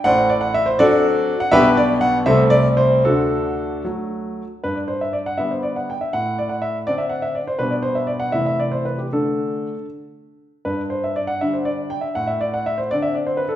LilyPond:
<<
  \new Staff \with { instrumentName = "Grand piano" } { \time 6/8 \key g \major \tempo 4. = 80 <c'' d'' fis''>8 d''16 fis''16 e''16 c''16 <fis' a' d''>4~ <fis' a' d''>16 fis''16 | <g' b' e''>8 d''8 fis''8 <a' c'' e''>8 d''8 c''8 | <d' fis' a'>4. r4. | b'16 d''16 c''16 e''16 d''16 fis''16 e''16 c''16 d''16 fis''16 g''16 e''16 |
fis''8 d''16 fis''16 e''8 d''16 e''16 fis''16 e''16 d''16 c''16 | b'16 d''16 c''16 e''16 d''16 fis''16 e''16 e''16 d''16 c''16 b'16 g'16 | a'4. r4. | b'8 c''16 e''16 d''16 fis''16 e''16 c''16 d''8 g''16 e''16 |
fis''16 e''16 d''16 fis''16 e''16 c''16 d''16 e''16 d''16 c''16 b'16 a'16 | }
  \new Staff \with { instrumentName = "Grand piano" } { \clef bass \time 6/8 \key g \major <a,, a,>4. <fis c' d'>4. | <b,, b, g b d'>4. <c, c g a c'>4. | <d, d>4. <fis a>4. | g,4. <d g b>4. |
a,4. <d c' d'>4. | <b, g b d'>4. <c e a e'>4. | <d a d'>4. r4. | g,4. <d g d'>4. |
a,4. <d c' d'>4. | }
>>